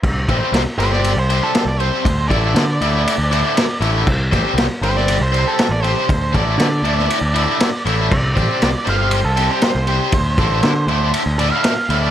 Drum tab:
CC |x---------------|----------------|x---------------|----------------|
RD |--x-x-x-x-x-x-x-|x-x-x-x-x-x-x-x-|--x-x-x-x-x-x-x-|x-x-x-x-x-x-x-x-|
SD |----o-oo----o---|----o-------o---|--o-o--o----o---|----o--o----o---|
BD |o-o-------------|o-o-------------|o-o-------------|o-o-------------|

CC |x---------------|----------------|
RD |--x-x-x-x-x-x-x-|x-x-x-x-x-x-x-x-|
SD |----o-o-----o---|----o-------o---|
BD |o-o-------------|o-o-------------|